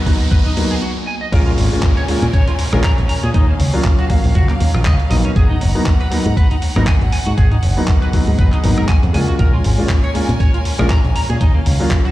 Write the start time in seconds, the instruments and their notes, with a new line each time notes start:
Already playing: violin section G#4 F#5, riser
0.06 grand piano F#3 B3 D#4, kick, open hi-hat
0.20 open hi-hat
0.31 clean electric guitar B4, kick, closed hi-hat
0.46 clean electric guitar D#4, closed hi-hat
0.57 grand piano F#3 A#3 B3 D#4, open hi-hat
0.71 clean electric guitar G#4, closed hi-hat
0.82 clean electric guitar F#4
1.07 clean electric guitar G#5
1.21 clean electric guitar D#5
1.32 picked electric bass A#1, grand piano G#3 A#3 C#4 F4, violin section C#4 A#4 G#5, clean electric guitar A#4, kick, closed hi-hat, downlifter
1.46 clean electric guitar F4
1.58 picked electric bass G#1, open hi-hat
1.72 grand piano G#3 A#3 C#4 F4
1.83 kick, clap, closed hi-hat
1.97 clean electric guitar C#5, closed hi-hat
2.08 grand piano G#3 A#3 C#4 F4, open hi-hat
2.22 picked electric bass A#2, closed hi-hat
2.33 clean electric guitar C#5, kick, closed hi-hat
2.48 clean electric guitar F4, closed hi-hat
2.59 open hi-hat
2.72 picked electric bass A#1, grand piano G#3 A#3 C#4 F4, clean electric guitar A#4, cross-stick, closed hi-hat
2.84 clean electric guitar A#5, kick, clap, closed hi-hat
2.98 picked electric bass A#1, closed hi-hat
3.09 clean electric guitar A#5, open hi-hat
3.23 picked electric bass A#2, clean electric guitar G#4, closed hi-hat
3.34 picked electric bass D#2, clean electric guitar D#4, violin section F5, kick, closed hi-hat
3.49 clean electric guitar A#3
3.60 picked electric bass C#2, open hi-hat
3.73 grand piano F#3 A#3 C#4 F4
3.84 kick, clap
3.99 clean electric guitar F#4, closed hi-hat
4.09 grand piano F#3 A#3 C#4 F5, kick, open hi-hat
4.24 picked electric bass A#1, open hi-hat
4.35 picked electric bass C#2, clean electric guitar F#4, kick, closed hi-hat
4.49 clean electric guitar A#3, clap, closed hi-hat
4.60 picked electric bass D#2, open hi-hat
4.74 picked electric bass A#1, clean electric guitar F4, cross-stick, closed hi-hat
4.85 picked electric bass C#2, clean electric guitar D#5, kick, clap, closed hi-hat
5.00 closed hi-hat
5.10 picked electric bass A#1, grand piano F#3 A#3 B3 D#4, clean electric guitar D#5, open hi-hat
5.25 clean electric guitar C#4, closed hi-hat
5.36 picked electric bass G#1, clean electric guitar G#4, violin section F#5 A#5, kick, closed hi-hat
5.50 clean electric guitar D#4
5.61 picked electric bass F#1, open hi-hat
5.75 grand piano F#3 A#3 B3 D#4
5.86 kick, clap, closed hi-hat
6.01 clean electric guitar B4, closed hi-hat
6.11 grand piano F#3 A#3 B3 D#4, open hi-hat
6.26 picked electric bass G#2, closed hi-hat
6.37 clean electric guitar B4, kick, closed hi-hat
6.51 clean electric guitar D#4, closed hi-hat
6.62 open hi-hat
6.76 picked electric bass G#1, grand piano F#3 A#3 B3 D#4, clean electric guitar A#4, cross-stick, closed hi-hat
6.87 clean electric guitar G#5, kick, clap, closed hi-hat
7.01 picked electric bass G#1, closed hi-hat
7.12 clean electric guitar G#5, open hi-hat
7.26 picked electric bass G#2, clean electric guitar F#4, closed hi-hat
7.37 picked electric bass G#1, clean electric guitar G#4, violin section G#4, kick, closed hi-hat
7.52 clean electric guitar D#4, closed hi-hat
7.63 picked electric bass F#1, open hi-hat
7.77 grand piano F#3 A#3 B3 D#4
7.88 kick, clap, closed hi-hat
8.02 clean electric guitar B4, closed hi-hat
8.13 grand piano F#3 B3 D#4, kick, open hi-hat
8.27 picked electric bass G#2, open hi-hat
8.39 picked electric bass F#1, clean electric guitar B4, kick, closed hi-hat
8.52 clean electric guitar D#4, clap, closed hi-hat
8.63 picked electric bass G#1, grand piano F#3 A#3 B3 D#4, open hi-hat
8.78 picked electric bass G#2, clean electric guitar A#4, cross-stick
8.88 clean electric guitar G#5, kick, clap, closed hi-hat
9.03 picked electric bass F2, closed hi-hat
9.13 picked electric bass C#2, grand piano G#3 A#3 C#4 F4, clean electric guitar G#5, open hi-hat
9.28 clean electric guitar F#4, closed hi-hat
9.39 picked electric bass A#1, violin section C#4 A#4 G#5, clean electric guitar A#4, kick, closed hi-hat
9.53 clean electric guitar F4
9.64 picked electric bass G#1, open hi-hat
9.78 grand piano G#3 A#3 C#4 F4
9.89 kick, clap, closed hi-hat
10.04 clean electric guitar C#5, closed hi-hat
10.14 grand piano G#3 A#3 C#4 F4, open hi-hat
10.29 picked electric bass A#2, closed hi-hat
10.40 clean electric guitar C#5, kick, closed hi-hat
10.54 clean electric guitar F4, closed hi-hat
10.65 open hi-hat
10.79 picked electric bass A#1, grand piano G#3 A#3 C#4 F4, clean electric guitar A#4, cross-stick, closed hi-hat
10.90 clean electric guitar A#5, kick, clap, closed hi-hat
11.04 picked electric bass A#1, closed hi-hat
11.16 clean electric guitar A#5, open hi-hat
11.29 picked electric bass A#2, clean electric guitar G#4, closed hi-hat
11.41 picked electric bass D#2, clean electric guitar D#4, violin section F5, kick, closed hi-hat
11.55 clean electric guitar A#3
11.66 picked electric bass C#2, open hi-hat
11.79 grand piano F#3 A#3 C#4 F4
11.91 kick, clap, closed hi-hat
12.05 clean electric guitar F#4, closed hi-hat